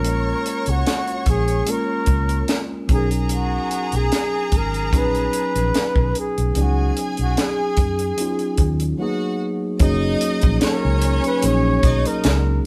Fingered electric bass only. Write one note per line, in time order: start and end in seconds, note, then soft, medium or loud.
0.00 0.32 A#1 medium
0.68 0.83 C#2 medium
1.27 1.61 A#1 medium
2.08 2.42 C#2 medium
2.89 3.57 B1 medium
3.93 4.09 B1 medium
4.53 4.93 G#1 medium
4.93 5.27 A#1 medium
5.56 5.71 A#1 medium
5.96 6.12 B1 medium
6.38 6.53 B1 medium
6.56 6.90 C#2 loud
7.19 7.34 B1 medium
7.78 8.12 F#2 medium
8.58 8.93 D#2 medium
9.81 10.15 F#1 medium
10.44 10.59 A#1 medium
10.85 11.19 C#2 medium
11.44 11.78 A#1 medium
11.84 12.02 B1 medium
12.25 12.59 C#2 medium